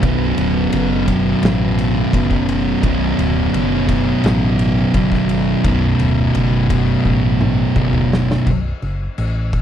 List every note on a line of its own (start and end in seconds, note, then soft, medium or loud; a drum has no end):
0.00 0.32 B0 loud
0.00 1.10 B1 medium
0.00 1.06 F#2 loud
0.00 8.44 D3 medium
0.00 8.44 F#3 medium
0.00 8.44 B3 medium
0.00 kick loud
0.00 ride loud
0.05 1.07 B2 loud
0.38 0.67 D1 medium
0.38 ride medium
0.72 1.31 F#1 medium
0.72 ride loud
1.08 2.13 B1 medium
1.08 2.12 F#2 medium
1.08 2.15 B2 medium
1.08 kick medium
1.08 ride medium
1.43 2.02 A1 loud
1.43 snare loud
1.43 ride loud
1.79 ride medium
2.13 2.72 F#1 loud
2.13 2.82 B1 medium
2.13 2.82 F#2 medium
2.13 2.85 B2 medium
2.13 kick medium
2.13 ride loud
2.31 kick medium
2.49 ride medium
2.83 3.13 B0 loud
2.83 3.90 B1 loud
2.83 3.87 F#2 loud
2.83 3.88 B2 loud
2.83 kick loud
2.83 ride medium
3.18 3.48 D1 medium
3.18 ride medium
3.53 4.12 F#1 medium
3.53 ride loud
3.88 4.93 B1 medium
3.88 4.93 F#2 medium
3.88 4.96 B2 medium
3.88 kick medium
3.88 ride medium
4.24 4.83 A1 medium
4.24 snare loud
4.24 ride loud
4.59 ride medium
4.94 5.53 F#1 loud
4.94 5.64 B1 medium
4.94 5.63 F#2 medium
4.94 5.66 B2 medium
4.94 kick medium
4.94 ride loud
5.12 kick medium
5.12 snare soft
5.29 ride medium
5.64 5.94 B0 medium
5.64 6.68 B1 medium
5.64 6.69 F#2 medium
5.64 6.68 B2 loud
5.64 kick loud
5.64 ride loud
5.99 6.29 D1 medium
5.99 ride medium
6.35 6.94 F#1 medium
6.35 ride loud
6.69 7.75 B1 medium
6.69 7.75 F#2 medium
6.69 7.74 B2 medium
6.69 kick medium
6.69 ride medium
7.05 7.65 A1 medium
7.05 kick medium
7.41 mid tom medium
7.76 8.35 F#1 medium
7.76 8.45 B1 medium
7.76 8.46 F#2 medium
7.76 8.46 B2 medium
7.76 kick medium
7.93 mid tom medium
8.13 snare loud
8.31 snare medium
8.47 8.71 B0 medium
8.47 kick loud
8.47 crash medium
8.82 9.06 F#1 medium
8.82 crash medium
9.18 9.62 A1 medium
9.18 crash medium
9.53 kick medium
9.53 crash medium